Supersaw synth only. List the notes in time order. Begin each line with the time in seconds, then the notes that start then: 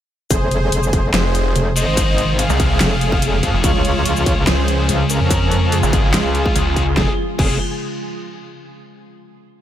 0.31 G#4 C5
1.14 G#4 C5
1.76 C5 D#5
2.39 G#4 F5
3.64 F4 C#5
4.47 G#4 C5
5.10 C#4 A#4
5.72 F4 G#4
6.97 G#4
7.39 G#4